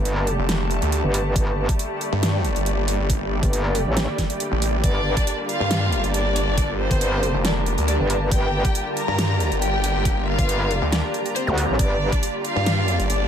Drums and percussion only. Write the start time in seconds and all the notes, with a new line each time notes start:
0.05 closed hi-hat
0.27 closed hi-hat
0.49 snare, closed hi-hat
0.71 closed hi-hat
0.82 closed hi-hat
0.92 closed hi-hat
1.14 open hi-hat
1.36 kick, closed hi-hat
1.69 kick, closed hi-hat
1.79 closed hi-hat
2.01 closed hi-hat
2.23 snare, closed hi-hat
2.45 closed hi-hat
2.56 closed hi-hat
2.66 closed hi-hat
2.88 open hi-hat
3.10 kick, closed hi-hat
3.43 kick, closed hi-hat
3.53 closed hi-hat
3.75 open hi-hat
3.97 snare, closed hi-hat
4.18 kick, snare, closed hi-hat
4.30 closed hi-hat
4.40 closed hi-hat
4.62 open hi-hat
4.84 kick, closed hi-hat
5.17 kick, closed hi-hat
5.27 closed hi-hat
5.49 closed hi-hat
5.71 snare, closed hi-hat
5.92 closed hi-hat
6.04 closed hi-hat
6.14 closed hi-hat
6.36 open hi-hat
6.58 kick, closed hi-hat
6.91 kick, closed hi-hat
7.01 closed hi-hat
7.23 closed hi-hat
7.45 snare, closed hi-hat
7.66 closed hi-hat
7.78 closed hi-hat
7.88 closed hi-hat
8.10 open hi-hat
8.31 kick, closed hi-hat
8.65 kick, closed hi-hat
8.75 closed hi-hat
8.97 closed hi-hat
9.19 snare, closed hi-hat
9.40 closed hi-hat
9.52 closed hi-hat
9.62 closed hi-hat
9.84 open hi-hat
10.05 kick, closed hi-hat
10.39 kick, closed hi-hat
10.49 closed hi-hat
10.71 open hi-hat
10.92 snare, closed hi-hat
11.14 closed hi-hat
11.26 closed hi-hat
11.36 closed hi-hat
11.58 open hi-hat
11.79 kick, closed hi-hat
12.12 kick, closed hi-hat
12.23 closed hi-hat
12.45 closed hi-hat
12.66 snare, closed hi-hat
12.88 closed hi-hat
13.00 closed hi-hat
13.10 closed hi-hat